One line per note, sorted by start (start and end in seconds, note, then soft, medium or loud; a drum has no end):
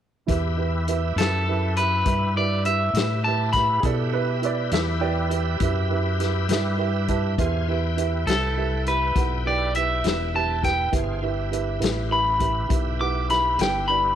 0.27 1.14 E2 medium
0.27 0.50 E4 medium
0.27 3.80 E4 medium
0.27 0.50 G4 medium
0.27 3.80 G4 medium
0.27 0.50 B4 medium
0.27 0.50 E5 medium
0.27 3.80 E5 medium
0.27 kick medium
0.27 closed hi-hat medium
0.31 3.80 B4 medium
0.57 0.79 E4 soft
0.57 0.80 G4 soft
0.57 0.80 B4 soft
0.57 0.80 E5 medium
0.88 1.10 E4 medium
0.88 1.10 G4 soft
0.88 1.10 B4 soft
0.88 1.10 E5 medium
0.88 closed hi-hat medium
1.16 2.02 F#2 medium
1.16 1.39 E4 soft
1.16 1.39 G4 soft
1.16 1.75 A4 medium
1.16 1.40 B4 soft
1.16 1.40 E5 soft
1.16 closed hi-hat medium
1.20 snare medium
1.48 1.69 E4 soft
1.48 1.69 G4 soft
1.48 1.70 B4 soft
1.48 1.70 E5 soft
1.77 1.99 E4 soft
1.77 1.99 G4 soft
1.77 2.34 B4 medium
1.77 1.99 B4 soft
1.77 1.99 E5 soft
1.77 closed hi-hat medium
2.05 2.92 G2 medium
2.05 2.27 E4 soft
2.05 2.27 G4 soft
2.05 2.28 B4 soft
2.05 2.28 E5 medium
2.05 kick medium
2.05 closed hi-hat medium
2.36 2.58 E4 soft
2.36 2.58 G4 soft
2.36 2.58 B4 soft
2.36 2.65 D5 medium
2.36 2.59 E5 soft
2.65 2.87 E4 soft
2.65 2.87 G4 soft
2.65 2.87 B4 soft
2.65 3.23 E5 medium
2.65 2.87 E5 medium
2.65 closed hi-hat medium
2.93 3.80 A2 medium
2.93 3.18 E4 soft
2.93 3.18 G4 soft
2.93 3.18 B4 soft
2.93 3.18 E5 soft
2.93 snare medium
2.93 closed hi-hat medium
3.24 3.47 E4 soft
3.24 3.47 G4 soft
3.24 3.48 B4 soft
3.24 3.48 E5 medium
3.24 3.52 A5 medium
3.53 3.76 E4 soft
3.53 3.76 G4 soft
3.53 3.76 B4 soft
3.53 3.77 E5 medium
3.53 3.82 B5 medium
3.53 kick medium
3.53 snare soft
3.53 closed hi-hat soft
3.80 4.69 B2 medium
3.80 4.05 G4 soft
3.80 3.84 G#4 medium
3.80 7.35 E5 medium
3.80 kick medium
3.80 closed hi-hat medium
3.84 4.06 E4 medium
3.84 7.35 G4 medium
3.84 4.13 A4 medium
3.84 4.06 B4 medium
3.84 7.35 B4 medium
3.84 4.06 D5 medium
4.13 4.35 E4 medium
4.13 4.35 G4 soft
4.13 4.42 B4 medium
4.13 4.35 B4 soft
4.13 4.36 E5 medium
4.42 4.64 E4 medium
4.42 4.64 G4 soft
4.42 4.65 B4 soft
4.42 4.72 D5 medium
4.42 4.65 E5 medium
4.42 closed hi-hat soft
4.71 5.58 E2 medium
4.71 4.94 E4 medium
4.71 4.94 G4 soft
4.71 4.94 B4 medium
4.71 5.01 E5 medium
4.71 4.95 E5 medium
4.71 snare medium
4.71 closed hi-hat medium
5.00 5.23 E4 medium
5.00 5.23 G4 medium
5.00 5.23 B4 soft
5.00 5.56 D5 medium
5.00 5.24 E5 medium
5.00 5.58 G5 medium
5.29 5.52 E4 medium
5.29 5.52 G4 soft
5.29 5.52 B4 soft
5.29 5.53 E5 medium
5.29 closed hi-hat soft
5.60 6.46 F#2 medium
5.60 5.83 E4 medium
5.60 5.83 G4 soft
5.60 5.83 B4 soft
5.60 5.84 E5 medium
5.60 kick medium
5.60 closed hi-hat medium
5.90 6.12 E4 medium
5.90 6.12 G4 medium
5.90 6.12 B4 medium
5.90 6.12 E5 medium
6.20 6.42 E4 medium
6.20 6.42 G4 medium
6.20 6.42 B4 soft
6.20 6.42 E5 medium
6.20 snare soft
6.20 closed hi-hat medium
6.49 7.35 G2 medium
6.49 6.72 E4 medium
6.49 6.72 G4 soft
6.49 6.72 B4 medium
6.49 6.72 E5 medium
6.49 snare medium
6.49 closed hi-hat medium
6.78 7.00 E4 medium
6.78 7.01 G4 medium
6.78 7.01 B4 medium
6.78 7.01 E5 medium
7.08 7.30 E4 medium
7.08 7.31 G4 medium
7.08 7.31 B4 medium
7.08 7.31 E5 medium
7.08 7.36 A5 medium
7.08 kick medium
7.08 closed hi-hat soft
7.38 8.24 E2 medium
7.38 7.60 E4 medium
7.38 7.60 G4 medium
7.38 7.60 B4 medium
7.38 7.68 C5 medium
7.38 7.60 E5 medium
7.38 7.68 F5 medium
7.38 7.67 G#5 medium
7.38 kick medium
7.38 closed hi-hat medium
7.68 7.90 E4 medium
7.68 7.90 G4 soft
7.68 10.90 B4 medium
7.68 7.90 B4 soft
7.68 10.91 E5 medium
7.68 7.90 E5 medium
7.68 10.91 G5 medium
7.97 8.19 E4 medium
7.97 8.19 G4 medium
7.97 8.19 B4 soft
7.97 8.20 E5 medium
7.97 closed hi-hat medium
8.26 9.12 C2 medium
8.26 8.49 E4 soft
8.26 8.49 G4 soft
8.26 8.84 A4 medium
8.26 8.49 B4 soft
8.26 8.50 E5 soft
8.26 snare medium
8.26 closed hi-hat medium
8.57 8.79 E4 soft
8.57 8.79 G4 soft
8.57 8.79 B4 soft
8.57 8.79 E5 medium
8.86 9.08 E4 soft
8.86 9.08 G4 soft
8.86 9.08 B4 soft
8.86 9.44 B4 medium
8.86 9.09 E5 soft
8.86 closed hi-hat soft
9.15 10.01 B1 medium
9.15 9.38 E4 soft
9.15 9.38 G4 soft
9.15 9.38 B4 soft
9.15 9.38 F#5 medium
9.15 kick medium
9.15 closed hi-hat medium
9.46 9.67 E4 soft
9.46 9.68 G4 soft
9.46 9.68 B4 soft
9.46 9.75 D5 medium
9.46 9.68 G5 medium
9.75 9.97 E4 soft
9.75 9.97 G4 soft
9.75 9.98 B4 soft
9.75 10.33 E5 medium
9.75 9.97 E5 soft
9.75 closed hi-hat medium
10.04 10.90 E1 medium
10.04 10.27 E4 soft
10.04 10.27 G4 soft
10.04 10.27 B4 soft
10.04 10.27 E5 medium
10.04 snare medium
10.04 closed hi-hat medium
10.34 10.56 E4 soft
10.34 10.56 G4 soft
10.34 10.56 B4 soft
10.34 10.56 E5 soft
10.34 10.64 A5 medium
10.62 10.85 E4 soft
10.62 10.85 G4 soft
10.62 10.86 B4 soft
10.62 10.85 G5 soft
10.62 10.93 G5 medium
10.62 kick medium
10.62 closed hi-hat soft
10.67 snare soft
10.92 11.79 G1 medium
10.92 11.15 E4 medium
10.92 11.15 G4 soft
10.92 11.15 B4 medium
10.92 11.24 C5 medium
10.92 11.15 E5 medium
10.92 11.24 F5 medium
10.92 kick medium
10.92 closed hi-hat medium
10.96 11.24 G#4 medium
11.22 11.45 E4 medium
11.22 11.45 G4 soft
11.22 14.15 G4 medium
11.22 11.45 B4 soft
11.22 14.15 B4 medium
11.22 14.15 E5 medium
11.22 11.45 E5 medium
11.51 11.74 E4 medium
11.51 11.74 G4 soft
11.51 11.75 B4 soft
11.51 11.75 E5 medium
11.51 closed hi-hat medium
11.80 12.68 A1 medium
11.80 12.03 E4 medium
11.80 12.03 G4 soft
11.80 12.03 B4 medium
11.80 12.03 E5 medium
11.80 closed hi-hat medium
11.84 snare medium
12.10 12.33 E4 soft
12.10 12.33 G4 soft
12.10 12.33 B4 soft
12.10 12.33 E5 medium
12.10 12.69 B5 medium
12.39 12.62 E4 soft
12.39 12.62 G4 soft
12.39 12.63 B4 soft
12.39 12.63 E5 soft
12.39 kick medium
12.39 closed hi-hat medium
12.69 13.56 B1 medium
12.69 12.92 E4 soft
12.69 12.92 G4 soft
12.69 12.93 B4 soft
12.69 12.92 E5 medium
12.69 kick medium
12.69 closed hi-hat medium
13.00 13.22 E4 soft
13.00 13.22 G4 soft
13.00 13.23 B4 soft
13.00 13.23 F#5 soft
13.00 13.29 D6 medium
13.30 13.52 E4 soft
13.30 13.52 G4 soft
13.30 13.52 B4 soft
13.30 13.52 E5 medium
13.30 13.59 B5 medium
13.30 snare soft
13.30 closed hi-hat medium
13.58 14.15 G1 medium
13.58 13.82 E4 soft
13.58 13.82 G4 soft
13.58 13.82 B4 soft
13.58 13.83 G5 medium
13.58 13.89 G5 medium
13.58 snare medium
13.58 closed hi-hat medium
13.88 14.11 E4 soft
13.88 14.11 G4 soft
13.88 14.11 B4 soft
13.88 14.12 D5 soft
13.88 14.15 B5 medium